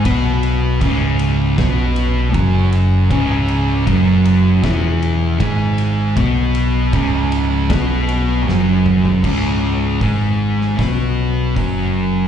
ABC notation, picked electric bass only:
X:1
M:4/4
L:1/8
Q:1/4=78
K:C#m
V:1 name="Picked electric bass" clef=bass
B,,,2 C,,,2 B,,,2 F,,,2 | C,,,2 F,,,2 E,,,2 G,,,2 | B,,,2 C,,,2 B,,,2 F,,,2 | C,,,2 G,,,2 B,,,2 F,,,2 |]